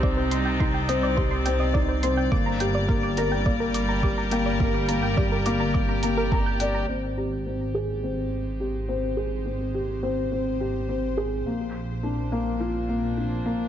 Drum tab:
HH |-x-x-x-x|-x-x-x-x|-x-x-x-x|--------|
BD |o-o-o-o-|o-o-o-o-|o-o-o-o-|--------|

HH |--------|--------|
BD |--------|--------|